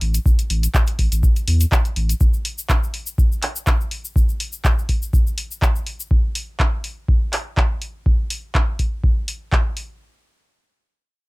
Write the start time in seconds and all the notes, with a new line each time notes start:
0.01 A1, open hi-hat
0.14 closed hi-hat, cabasa
0.26 kick, cabasa
0.39 closed hi-hat, cabasa
0.50 A1, open hi-hat
0.63 closed hi-hat, cabasa
0.74 kick, clap, cabasa
0.87 closed hi-hat, cabasa
0.99 A1, kick, open hi-hat
1.12 A1, closed hi-hat, cabasa
1.23 kick, cabasa
1.36 closed hi-hat, cabasa
1.48 E2, open hi-hat
1.60 closed hi-hat, cabasa
1.72 kick, clap, cabasa
1.85 closed hi-hat, cabasa
1.96 A1, open hi-hat
2.09 closed hi-hat, cabasa
2.21 kick, cabasa
2.33 cabasa
2.45 open hi-hat
2.58 cabasa
2.69 kick, clap, cabasa
2.83 cabasa
2.94 open hi-hat
3.06 cabasa
3.18 kick, cabasa
3.32 cabasa
3.43 clap, open hi-hat
3.56 cabasa
3.67 kick, clap, cabasa
3.81 cabasa
3.91 open hi-hat
4.05 cabasa
4.16 kick, cabasa
4.29 cabasa
4.40 open hi-hat
4.52 cabasa
4.65 kick, clap, cabasa
4.79 cabasa
4.89 kick, open hi-hat
5.02 cabasa
5.13 kick, cabasa
5.27 cabasa
5.38 open hi-hat
5.51 cabasa
5.62 kick, clap, cabasa
5.76 cabasa
5.87 open hi-hat
6.00 cabasa
6.11 kick
6.35 open hi-hat
6.60 kick, clap
6.84 open hi-hat
7.08 kick
7.33 clap, open hi-hat
7.57 kick, clap
7.82 open hi-hat
8.06 kick
8.30 open hi-hat
8.55 kick, clap
8.79 kick, open hi-hat
9.04 kick
9.28 open hi-hat
9.52 kick, clap
9.77 open hi-hat